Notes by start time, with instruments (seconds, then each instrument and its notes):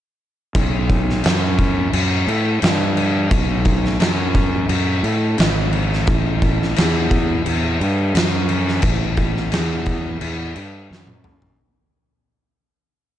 0.55 fingered electric bass B1, kick, crash
0.90 kick, crash
1.10 snare
1.24 fingered electric bass F#2, snare, crash
1.58 kick, crash
1.93 fingered electric bass F#2, crash
2.27 fingered electric bass A2, crash
2.62 fingered electric bass G2, snare, crash
2.97 crash
3.31 fingered electric bass B1, kick, crash
3.65 kick, crash
3.85 snare
4.00 fingered electric bass F#2, snare, crash
4.35 kick, crash
4.69 fingered electric bass F#2, crash
5.03 fingered electric bass A2, crash
5.38 fingered electric bass G#1, snare, crash
5.72 crash
5.93 snare
6.07 fingered electric bass A1, kick, crash
6.42 kick, crash
6.62 snare
6.76 fingered electric bass E2, snare, crash
7.11 kick, crash
7.46 fingered electric bass E2, crash
7.80 fingered electric bass G2, crash
8.14 fingered electric bass F#2, snare, crash
8.49 crash
8.68 snare
8.82 fingered electric bass A1, kick, crash
9.17 kick, crash
9.37 snare
9.52 fingered electric bass E2, snare, crash
9.86 kick, crash
10.21 fingered electric bass E2, crash
10.55 fingered electric bass G2, crash
10.90 fingered electric bass F#2, snare
11.07 high tom
11.24 mid tom
11.42 floor tom